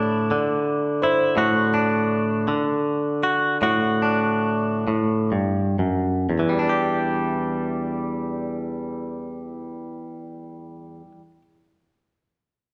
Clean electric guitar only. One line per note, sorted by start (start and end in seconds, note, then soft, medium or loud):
0.00 0.31 A2 medium
0.00 0.30 D3 medium
0.00 1.73 D4 soft
0.00 1.02 E4 soft
0.31 2.47 D3 medium
1.03 1.37 E4 soft
1.37 2.46 A2 medium
1.37 3.22 F#4 medium
1.74 4.02 D4 soft
2.48 6.29 D3 medium
3.23 3.57 F#4 soft
3.62 4.86 A2 medium
3.62 6.23 F#4 medium
4.02 6.23 D4 soft
4.88 5.32 A2 soft
5.32 5.79 G2 soft
5.79 6.28 F#2 soft
6.30 11.02 E2 soft
6.39 11.11 E3 soft
6.49 11.21 G3 soft
6.59 11.31 D4 soft
6.69 11.41 G4 soft